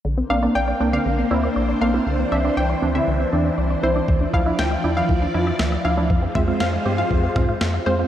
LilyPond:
<<
  \new Staff \with { instrumentName = "Synth pluck" } { \time 4/4 \key bes \lydian \tempo 4 = 119 r8 f''16 r16 g''16 r8 f''8. r4 f''16 r16 | r8 e''16 r16 g''16 r8 e''8. r4 c''16 r16 | r8 f''16 r16 g''16 r8 f''8. r4 f''16 r16 | r8 e''16 r16 f''16 r8 f''8. r4 c''16 r16 | }
  \new Staff \with { instrumentName = "Synth arpeggio sound" } { \time 4/4 \key bes \lydian d16 c'16 d''16 d''16 d''16 d''16 c'16 d16 d16 c'16 d''16 d''16 d''16 d''16 bes'16 c'16 | d16 c'16 d''16 d''16 d''16 d''16 c'16 d16 d16 c'16 d''16 d''16 d''16 d''16 e'16 c'16 | e16 d'16 e''16 e''16 e''16 e''16 d'16 e16 e16 d'16 e''16 e''16 e''16 e''16 f'16 d'16 | f16 c'16 f''16 f''16 f''16 f''16 c'16 f16 f16 c'16 f''16 f''16 f''16 f''16 aes'16 c'16 | }
  \new Staff \with { instrumentName = "Analog polysynth" } { \time 4/4 \key bes \lydian r8 <bes c' d'>16 <bes c' d'>16 r8 <bes c' d'>16 <bes c' d'>16 r8 <bes c' e'>16 r8. <bes c' d'>16 <bes c' e'>16 | r8 <e c' d'>16 <e c' d'>16 r8 <e c' d'>16 <e c' e'>16 r8 <e c' d'>16 r8. <e c' e'>16 <e c' d'>16 | r8 <f d' e'>16 <f d' e'>16 r8 <f d' e'>16 <f d' e'>16 r8 <f d' e'>16 r8. <f d' e'>16 <f d' e'>16 | r8 <aes c' f'>16 <aes c' f'>16 r8 <aes c' g'>16 <aes c' f'>16 r8 <aes c' f'>16 r8. <aes c' f'>16 <aes c' f'>16 | }
  \new Staff \with { instrumentName = "String machine" } { \time 4/4 \key bes \lydian << { <d' c''>1~ | <d' c''>1 | <e d''>1 | <f' c''>1 | } \\ { bes1 | e1 | f1 | aes1 | } >> }
  \new Staff \with { instrumentName = "Analog synth bass" } { \clef bass \time 4/4 \key bes \lydian bes,,8 bes,,8 bes,,8 c,8 bes,,8 d,8 bes,,8 bes,,8 | c,8 c,8 c,8 d,8 c,8 e,8 c,8 c,8 | d,8 d,8 d,8 e,8 d,8 f,8 d,8 d,8 | f,8 f,8 f,8 g,8 f,8 aes,8 f,8 f,8 | }
  \new DrumStaff \with { instrumentName = "Drums" } \drummode { \time 4/4 r4 r4 r4 r4 | r4 r4 r4 r4 | bd8 bd8 sn4 bd4 sn4 | bd8 <bd toml>8 sn4 bd8 <bd toml>8 sn4 | }
>>